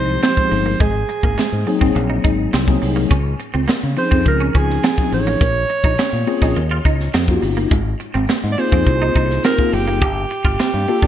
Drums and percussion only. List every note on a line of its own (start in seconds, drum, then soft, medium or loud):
0.23 snare loud
0.23 closed hi-hat medium
0.37 kick medium
0.52 open hi-hat medium
0.80 kick loud
0.80 closed hi-hat medium
1.09 closed hi-hat medium
1.23 kick medium
1.38 snare medium
1.38 closed hi-hat medium
1.67 open hi-hat medium
1.81 kick medium
1.96 closed hi-hat medium
2.25 kick medium
2.25 closed hi-hat medium
2.53 snare loud
2.53 closed hi-hat loud
2.68 kick medium
2.82 open hi-hat medium
3.11 kick loud
3.11 closed hi-hat medium
3.40 closed hi-hat medium
3.68 snare loud
3.68 closed hi-hat medium
3.97 open hi-hat medium
4.12 kick medium
4.26 kick medium
4.26 closed hi-hat medium
4.55 kick medium
4.55 closed hi-hat medium
4.70 snare soft
4.83 snare loud
4.83 closed hi-hat loud
4.98 kick medium
5.12 open hi-hat medium
5.41 kick loud
5.41 closed hi-hat loud
5.70 closed hi-hat medium
5.84 kick medium
5.98 snare loud
5.98 closed hi-hat medium
6.27 open hi-hat medium
6.42 kick medium
6.42 snare soft
6.56 closed hi-hat medium
6.85 kick medium
6.85 closed hi-hat medium
7.00 snare soft
7.14 snare loud
7.14 closed hi-hat loud
7.28 kick medium
7.42 open hi-hat medium
7.71 kick loud
7.71 closed hi-hat medium
8.00 closed hi-hat medium
8.29 snare loud
8.29 closed hi-hat medium
8.57 open hi-hat medium
8.72 kick medium
8.87 kick medium
8.87 closed hi-hat medium
9.16 kick medium
9.16 closed hi-hat medium
9.31 snare soft
9.44 snare loud
9.44 closed hi-hat medium
9.59 kick medium
9.73 open hi-hat medium
10.02 kick loud
10.02 closed hi-hat medium
10.31 closed hi-hat medium
10.45 kick medium
10.59 snare loud
10.59 closed hi-hat medium
10.87 open hi-hat medium
11.02 kick medium